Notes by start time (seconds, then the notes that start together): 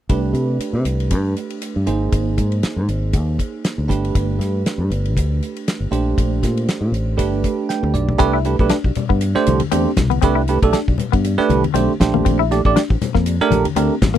0.09 C2 A3 D4 G4 B4, kick, hi-hat pedal, ride
0.33 C3, hi-hat pedal, ride
0.59 muted fingered electric bass stroke, hi-hat pedal, ride
0.73 C3
0.85 C2, hi-hat pedal, ride
1.00 ride
1.11 G2, kick, hi-hat pedal, ride
1.37 hi-hat pedal, ride
1.50 ride
1.62 hi-hat pedal, ride
1.76 G2
1.86 G#1 A#3 D#4 G#4 C5, hi-hat pedal, ride
2.12 G#1, kick, hi-hat pedal, ride
2.37 G#2, kick, hi-hat pedal, ride
2.52 ride
2.63 muted fingered electric bass stroke, snare, hi-hat pedal, ride
2.76 G#2
2.88 G#1, hi-hat pedal, ride
3.13 D#2, kick, hi-hat pedal, ride
3.39 kick, hi-hat pedal, ride
3.64 snare, hi-hat pedal, ride
3.78 D2
3.88 G1 A3 D4 G4 B4, kick, hi-hat pedal, ride
4.05 ride
4.15 G1, kick, hi-hat pedal, ride
4.39 G2, snare, hi-hat pedal, ride
4.65 muted fingered electric bass stroke, snare, hi-hat pedal, ride
4.78 G2
4.90 G1, hi-hat pedal, ride
5.05 ride
5.16 D2, kick, hi-hat pedal, ride
5.43 hi-hat pedal, ride
5.56 ride
5.68 snare, hi-hat pedal, ride
5.80 G1
5.91 A#1 A3 D4 G4 C5, hi-hat pedal, ride
6.18 A#1, kick, hi-hat pedal, ride
6.43 A#2, kick, snare, hi-hat pedal, ride
6.57 ride
6.67 muted fingered electric bass stroke, snare, hi-hat pedal, ride
6.81 A#2
6.92 A1, hi-hat pedal, ride
7.17 G1 A3 D4 G4 B4, kick, hi-hat pedal, ride
7.44 kick, hi-hat pedal, ride
7.69 G5, snare, hi-hat pedal
7.83 D2, high tom
7.94 B1 D5, hi-hat pedal, mid tom
8.09 floor tom
8.18 C2 A3 C4 D4 G4 B4, kick, hi-hat pedal, ride
8.33 E4
8.45 A3 D4 G4 B4, hi-hat pedal, ride
8.59 B1 A3 D4 G4 B4, kick
8.69 D4, snare, hi-hat pedal, ride
8.84 B1 G4 D5, kick
8.95 G4 D5, muted fingered electric bass stroke, hi-hat pedal, ride, low conga
9.09 G2 B3, kick
9.21 G4 B4, hi-hat pedal, ride
9.35 A3 D4 G4 C5, muted fingered electric bass stroke, snare
9.46 C2, hi-hat pedal, ride, high conga
9.60 ride, high conga
9.71 E2 A3 C4 D4 G4 C5, hi-hat pedal, ride
9.97 C2 G4 B4, kick, snare, hi-hat pedal, ride, low conga
10.10 B3, ride, high conga
10.22 C2 A3 C4 D4 G4 B4, kick, hi-hat pedal, ride
10.35 E4
10.48 A3 D4 G4 B4, hi-hat pedal, ride
10.62 B1 A3 D4 G4 A4, kick, ride
10.73 D4, snare, hi-hat pedal, ride
10.88 B1 G4 D5, kick
10.98 G4 B4, muted fingered electric bass stroke, hi-hat pedal, ride, low conga
11.12 G2 B3, kick, ride
11.24 G4 D5, hi-hat pedal, ride
11.38 A3 D4 G4 B4, muted fingered electric bass stroke, snare
11.49 C2, hi-hat pedal, ride, high conga
11.64 ride, high conga
11.74 B1 A3 C4 D4 G4 C5, hi-hat pedal, ride
12.00 A#1 A3 D4 G4 C5, kick, snare, hi-hat pedal, ride
12.14 A#3, high conga
12.25 A#1 C4, kick, hi-hat pedal, ride
12.39 E4
12.51 A3 D4 G4 D5, snare, hi-hat pedal, ride
12.65 A1 A3 D4 G4 D5, kick
12.76 D4, snare, hi-hat pedal, ride
12.90 A1 G4 C5, kick
13.02 G4 C5, snare, hi-hat pedal, ride, low conga
13.15 F2 A#3, kick, snare
13.26 G4 D5, hi-hat pedal, ride
13.40 A3 D4 G4 A#4, muted fingered electric bass stroke, snare
13.50 A#1, hi-hat pedal, ride, high conga
13.65 ride, high conga
13.76 D2 A3 C4 D4 G4 A#4, hi-hat pedal, ride
14.02 A1 G4 A#4, kick, snare, hi-hat pedal, ride, low conga
14.14 A#3, ride